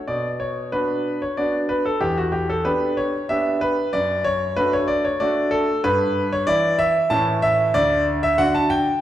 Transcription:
0.07 B2 D5
0.40 C#5
0.72 B3 D4 F#4 B4
1.22 C#5
1.37 B3 D4 F#4 D5
1.69 B4
1.85 A4
2.01 E2 G4
2.17 F#4
2.32 G4
2.50 A4
2.65 B3 D4 G4 B4
2.97 C#5
3.29 B3 D4 G4 E5
3.61 B4
3.93 F#2 D5
4.24 C#5
4.56 A3 D4 F#4 B4
4.73 C#5
4.88 D5
5.05 C#5
5.20 A3 D4 F#4 D5
5.51 A4
5.84 G2 B4
6.33 C#5
6.47 E3 E4 D5
6.79 E5
7.10 A2 E3 C#4 E4 A5
7.42 E5
7.74 D2 D5
8.23 E5
8.38 D3 D4 F#4 F#5
8.55 A5
8.70 G5

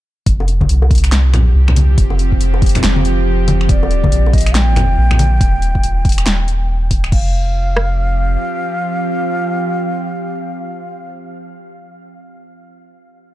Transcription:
0.26 F1 F3 C4 G4, kick, closed hi-hat
0.40 high bongo
0.48 closed hi-hat
0.61 kick, high conga
0.69 C2, closed hi-hat
0.82 high bongo
0.91 kick, closed hi-hat
0.95 closed hi-hat
0.98 closed hi-hat
1.04 finger snap, closed hi-hat
1.12 snare, clap, closed hi-hat
1.29 B1
1.34 finger snap, closed hi-hat, low conga
1.55 C2
1.68 finger snap, low conga
1.76 open hi-hat, high conga
1.98 F1, kick, closed hi-hat
2.10 high bongo
2.19 closed hi-hat
2.32 kick
2.41 F1, closed hi-hat
2.54 high bongo
2.62 kick, closed hi-hat
2.66 closed hi-hat
2.69 closed hi-hat
2.75 finger snap, closed hi-hat, low conga
2.84 F1, snare, clap, closed hi-hat
2.96 high conga
3.05 closed hi-hat
3.48 open hi-hat, high conga
3.61 finger snap
3.69 D#1 D#3 A#3 F4 D5, kick, closed hi-hat
3.83 high bongo
3.91 closed hi-hat
4.04 kick, high conga
4.12 A#1, closed hi-hat
4.26 high bongo
4.33 D#5, kick, closed hi-hat
4.38 closed hi-hat
4.41 closed hi-hat
4.46 finger snap, closed hi-hat
4.55 G5, snare, clap, closed hi-hat
4.76 finger snap, closed hi-hat, low conga
4.98 A#1
5.11 finger snap, low conga
5.19 open hi-hat, high conga
5.41 D#1, kick, closed hi-hat
5.62 closed hi-hat
5.75 kick
5.83 D#1, closed hi-hat
6.05 kick, closed hi-hat
6.09 closed hi-hat
6.12 closed hi-hat
6.18 finger snap, closed hi-hat
6.26 D#1, snare, clap, closed hi-hat
6.48 closed hi-hat
6.91 D#1, kick, open hi-hat
7.04 finger snap, closed hi-hat
7.12 F1 F3 C4 G4 F5, kick, crash
7.77 cross-stick

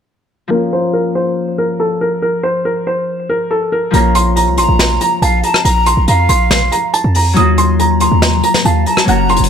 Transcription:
0.48 F3 A#3 A#4
0.52 C#4 F4
0.73 C5
0.93 A#4
1.15 C5
1.58 A#4
1.80 A4
2.01 A#4
2.22 A#4
2.43 C5
2.65 A#4
2.87 C5
3.29 A#4
3.51 A4
3.72 A#4
3.91 A#1 F3 A#3 C#4 A#5, closed hi-hat
3.95 F4 A#4
4.15 C6, closed hi-hat
4.36 A#5, closed hi-hat
4.47 C2
4.57 A#1 A#5 C6, closed hi-hat
4.68 A#1
4.79 snare, closed hi-hat
5.01 A#5, closed hi-hat
5.22 A#1 F5 A5, closed hi-hat
5.43 A5 A#5, closed hi-hat
5.54 cross-stick
5.65 A#1 A#5, closed hi-hat
5.86 C6, closed hi-hat
5.97 A#1
6.08 F2 F5 A#5, closed hi-hat
6.29 A#1 C6, closed hi-hat
6.51 snare, closed hi-hat
6.72 A#5, closed hi-hat
6.94 A5, closed hi-hat
7.04 F2
7.15 A#5, open hi-hat
7.33 D#2 F#3 A#3 D#4 D#6, closed hi-hat
7.38 F4 F#4
7.58 C6, closed hi-hat
7.79 A#5, closed hi-hat
8.00 A#5 C6, closed hi-hat
8.12 D#2
8.22 snare, closed hi-hat
8.43 A#5, closed hi-hat
8.54 snare
8.65 D#2 F5 A5, closed hi-hat
8.86 A5 A#5, closed hi-hat
8.97 cross-stick
9.04 F#1 F#3 A#3 C#4 A#5, closed hi-hat
9.09 F#4 A#4 F#5
9.29 C6, closed hi-hat
9.36 F1, closed hi-hat
9.44 closed hi-hat

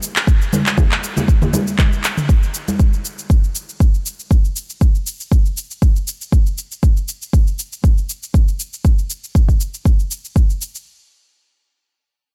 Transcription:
0.03 shaker
0.16 clap, shaker
0.27 kick, shaker
0.42 shaker
0.53 mid tom, high conga, shaker
0.66 clap, shaker
0.77 kick, low conga, shaker
0.92 clap, shaker
1.04 shaker
1.17 high conga, low conga, shaker
1.28 kick, shaker
1.42 mid tom, low conga, shaker
1.53 high conga, low conga, shaker
1.67 shaker
1.79 kick, clap, mid tom, high conga, shaker
1.93 shaker
2.04 clap, shaker
2.17 mid tom, shaker
2.29 kick, shaker
2.43 shaker
2.55 shaker
2.68 high conga, shaker
2.80 kick, shaker
2.93 shaker
3.05 shaker
3.19 shaker
3.30 kick, shaker
3.44 shaker
3.56 shaker
3.69 shaker
3.80 kick, shaker
3.94 shaker
4.06 shaker
4.20 shaker
4.31 kick, shaker
4.45 shaker
4.56 shaker
4.70 shaker
4.81 kick, shaker
4.95 shaker
5.07 shaker
5.20 shaker
5.32 kick, shaker
5.46 shaker
5.57 shaker
5.71 shaker
5.82 kick, shaker
5.96 shaker
6.08 shaker
6.21 shaker
6.32 kick, shaker
6.47 shaker
6.58 shaker
6.72 shaker
6.83 kick, shaker
6.97 shaker
7.09 shaker
7.22 shaker
7.33 kick, shaker
7.47 shaker
7.59 shaker
7.73 shaker
7.84 kick, shaker
7.98 shaker
8.10 shaker
8.23 shaker
8.34 kick, shaker
8.48 shaker
8.60 shaker
8.73 shaker
8.85 kick, shaker
8.99 shaker
9.10 shaker
9.24 shaker
9.35 kick, shaker
9.49 kick, shaker
9.61 shaker
9.74 shaker
9.85 kick, shaker
9.99 shaker
10.11 shaker
10.25 shaker
10.36 kick, shaker
10.50 shaker
10.62 shaker
10.75 shaker

